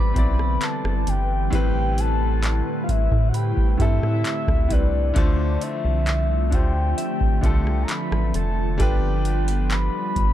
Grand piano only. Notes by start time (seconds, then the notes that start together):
Already playing: C3 B3 E4 D5
0.14 B3 C4 E4
0.18 D5
1.50 A2 G3 C4
1.55 B4
3.78 A2 G3 C4
3.82 A4
4.68 A2 G3 C4
4.73 B4
5.14 D3 A3 F4
5.18 C5
6.50 D3 A3 F4
6.55 C5
7.41 D3 A3 F4
7.46 A4
8.78 G3 D4 F4
8.82 B4